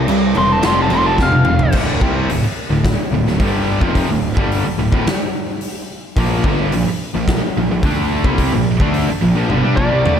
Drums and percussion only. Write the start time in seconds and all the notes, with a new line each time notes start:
0.08 crash
0.35 crash
0.63 snare, crash
0.90 crash
1.18 kick, snare
1.32 high tom
1.45 mid tom
1.59 floor tom
1.72 kick, crash
2.01 kick
2.30 open hi-hat
2.85 kick, snare, open hi-hat
3.27 snare
3.40 kick, open hi-hat
3.81 kick
3.95 kick, open hi-hat
4.37 kick
4.52 open hi-hat
4.92 kick
5.07 snare, open hi-hat
5.61 open hi-hat
6.17 kick, open hi-hat
6.44 kick
6.72 open hi-hat
7.28 kick, snare, open hi-hat
7.83 kick, open hi-hat
8.24 kick
8.38 kick, open hi-hat
8.80 kick
8.94 open hi-hat
9.50 high tom
9.77 kick
10.06 mid tom